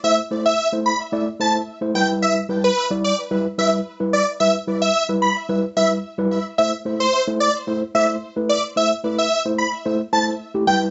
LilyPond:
<<
  \new Staff \with { instrumentName = "Supersaw synth" } { \time 4/4 \key a \dorian \tempo 4 = 110 e''16 r8 e''8 r16 b''16 r8. a''16 r8. g''16 r16 | e''16 r8 b'8 r16 d''16 r8. e''16 r8. d''16 r16 | e''16 r8 e''8 r16 b''16 r8. e''16 r4 r16 | e''16 r8 c''8 r16 d''16 r8. e''16 r8. d''16 r16 |
e''16 r8 e''8 r16 b''16 r8. a''16 r8. g''16 r16 | }
  \new Staff \with { instrumentName = "Tine electric piano" } { \time 4/4 \key a \dorian <a e' c''>16 r16 <a e' c''>16 r8 <a e' c''>16 r8 <a e' d''>16 r16 <a e' c''>16 r8 <a e' c''>16 <g e' b'>8~ | <g e' b'>16 r16 <g e' b'>16 r8 <g e' d''>16 r8 <g e' b'>16 r16 <g e' b'>16 r8 <g e' b'>16 r8 | <g e' b'>16 r16 <g e' b'>16 r8 <g e' b'>16 r8 <g e' b'>16 r16 <g e' b'>16 r8 <g e' b'>16 r8 | <a e' c''>16 r16 <a e' c''>16 r8 <a e' c''>16 r8 <a e' c''>16 r16 <a e' c''>16 r8 <a e' b'>16 r8 |
<a e' c''>16 r16 <a e' b'>16 r8 <a e' c''>16 r8 <a e' c''>16 r16 <a e' c''>16 r8 <a e' g'>16 <g e' b'>8 | }
>>